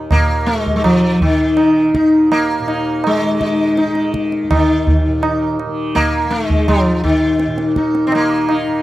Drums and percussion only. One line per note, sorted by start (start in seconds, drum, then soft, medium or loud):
0.11 tabla na medium
0.11 tabla ge medium
0.48 tabla te medium
0.66 tabla ge soft
0.84 tabla na medium
0.84 tabla ge medium
1.21 tabla ge soft
1.57 tabla na medium
1.95 tabla ke medium
2.32 tabla na medium
2.68 tabla na medium
3.04 tabla na medium
3.41 tabla ke medium
3.77 tabla te medium
3.95 tabla te soft
4.14 tabla ke medium
4.32 tabla te soft
4.51 tabla na medium
4.51 tabla ge medium
4.87 tabla ge medium
5.23 tabla na medium
5.60 tabla na soft
5.96 tabla na medium
5.96 tabla ge medium
6.31 tabla te medium
6.50 tabla ge soft
6.68 tabla na medium
6.68 tabla ge medium
7.04 tabla ge soft
7.39 tabla te medium
7.58 tabla te medium
7.76 tabla ke medium
7.95 tabla te medium
8.12 tabla na medium
8.49 tabla na medium